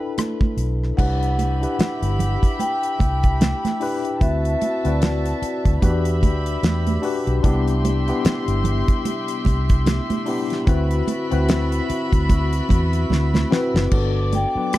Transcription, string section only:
0.00 0.54 B4 medium
0.00 0.54 B5 loud
0.97 4.17 G4 medium
0.97 4.17 E5 medium
0.97 4.17 B5 medium
4.20 5.79 F#4 medium
4.20 5.79 E5 medium
4.20 5.79 A5 medium
5.82 7.41 G4 medium
5.82 7.41 E5 medium
5.82 7.41 B5 medium
7.43 10.63 G4 medium
7.43 10.64 E5 medium
7.43 10.64 C6 medium
10.68 13.88 F#4 medium
10.68 13.88 E5 medium
10.68 13.88 B5 loud
13.92 14.78 D5 medium
13.92 14.78 D6 loud

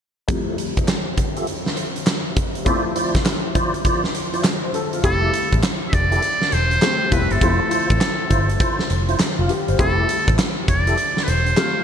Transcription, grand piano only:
0.28 2.62 F2 medium
0.28 2.62 G3 medium
0.28 2.62 A3 medium
0.28 2.63 C4 medium
0.28 2.63 E4 medium
2.65 4.69 F3 medium
2.65 4.70 A3 medium
2.65 4.70 C4 medium
2.65 4.41 E4 medium
4.64 4.74 C5 medium
4.74 4.92 A4 medium
4.93 5.21 F4 medium
5.04 5.92 G3 medium
5.04 5.93 A3 medium
5.04 5.93 C4 medium
5.04 5.93 E4 medium
6.82 7.06 G3 medium
6.82 7.06 A3 medium
6.82 7.06 C4 medium
6.82 7.07 G4 medium
7.11 7.36 G3 medium
7.11 7.36 A3 medium
7.11 7.36 C4 medium
7.11 7.36 E4 medium
7.41 8.30 F3 medium
7.41 8.30 A3 medium
7.41 8.31 C4 medium
7.41 8.31 E4 medium
9.39 9.49 F4 medium
9.50 9.67 G4 medium
9.69 9.97 C5 medium
9.79 10.68 G3 medium
9.79 10.68 A3 medium
9.79 10.68 C4 medium
9.79 10.68 E4 medium
11.57 11.81 G3 medium
11.57 11.82 A3 medium
11.57 11.82 C4 medium
11.57 11.82 F4 medium

